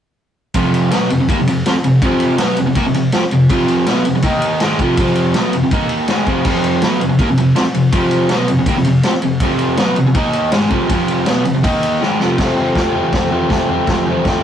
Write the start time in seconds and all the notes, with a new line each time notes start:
0.54 F2 C3 F3, kick, ride
0.74 ride
0.91 B2 F#3 B3, snare, ride
1.10 F2 C3, ride
1.20 F2 C3
1.29 D#3 A#3, kick, ride
1.39 F2 C3
1.47 F2 C3, ride
1.66 F3 C4, snare, ride
1.75 muted overdriven electric guitar stroke
1.84 F2 C3, ride
2.02 F2 C3 F3, kick, ride
2.20 ride
2.38 B2 F#3 B3, snare, ride
2.57 F2 C3, ride
2.66 F2 C3
2.75 D#3 A#3, kick, ride
2.86 F2 C3
2.94 F2 C3, ride
3.12 F3 C4, snare, ride
3.23 muted overdriven electric guitar stroke
3.31 F2 C3, ride
3.50 F2 C3 F3, kick, ride
3.68 ride
3.87 B2 F#3 B3, snare, ride
4.05 F2 C3, ride
4.15 F2 C3
4.22 D#3 A#3 D#4, kick, ride
4.42 ride
4.60 G#2 D#3 G#3, snare, ride
4.79 F2 C3 F3, kick, ride
4.97 F2 C3 F3, kick, ride
5.15 ride
5.34 B2 F#3 B3, snare, ride
5.53 F2 C3, ride
5.63 F2 C3
5.71 D#3 A#3 D#4, kick, ride
5.89 ride
6.08 G#2 D#3 G#3, snare, ride
6.27 F2 C3 F3, kick, ride
6.45 F2 C3 F3, kick, crash
6.64 ride
6.82 B2 F#3 B3, snare, ride
7.01 F2 C3, ride
7.09 F2 C3
7.19 D#3 A#3, kick, ride
7.29 F2 C3
7.38 F2 C3, ride
7.56 F3 C4, snare, ride
7.66 muted overdriven electric guitar stroke
7.74 F2 C3, ride
7.92 F2 C3 F3, kick, ride
8.11 ride
8.29 B2 F#3 B3, snare, ride
8.48 F2 C3, ride
8.59 F2 C3
8.66 D#3 A#3, kick, ride
8.78 F2 C3
8.84 F2 C3, ride
9.03 F3 C4, snare, ride
9.14 muted overdriven electric guitar stroke
9.22 F2 C3, ride
9.40 F2 C3 F3, kick, ride
9.59 ride
9.77 B2 F#3 B3, snare, ride
9.96 F2 C3, ride
10.06 F2 C3
10.14 D#3 A#3 D#4, kick, ride
10.33 ride
10.51 G#2 D#3 G#3, snare, ride
10.70 F2 C3 F3, kick, ride
10.90 F2 C3 F3, kick, ride
11.08 ride
11.26 B2 F#3 B3, snare, ride
11.45 F2 C3, ride
11.55 F2 C3
11.63 D#3 A#3 D#4, kick, ride
11.83 ride
12.01 G#2 D#3 G#3, snare
12.19 F2 C3 F3, snare
12.38 F2 C3 F3 A3 C4, kick, snare, floor tom, crash
12.57 F3 A3 C4, floor tom
12.75 F2 C3 F3 A3 C4, kick, snare, floor tom
12.93 F3 A3 C4, floor tom
13.13 C3 F3 A3 C4, kick, snare, floor tom
13.31 F2 C3 F3 A3 C4, floor tom
13.49 C3 F3 A3 C4, kick, snare, floor tom
13.68 A3 C4, floor tom
13.73 F3
13.87 F2 C3 F3 A3 C4, kick, snare, floor tom
14.06 F3 A3 C4, floor tom
14.25 F2 C3 F3 A3 C4, kick, snare, floor tom